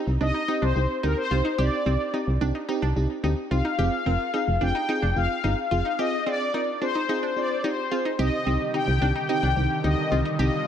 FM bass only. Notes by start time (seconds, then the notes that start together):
0.07 C2
0.21 C2
0.62 C2
0.76 C2
1.04 D2
1.31 C2
1.58 C2
1.86 C2
2.27 C2
2.41 C2
2.82 C2
2.96 C2
3.23 D2
3.51 C2
3.78 F1
4.06 F1
4.48 F1
4.61 F1
5.02 F1
5.16 F1
5.44 G1
5.71 F1
8.19 C2
8.46 C2
8.88 C2
9.01 C2
9.43 C2
9.56 C2
9.84 D2
10.12 C2
10.39 C2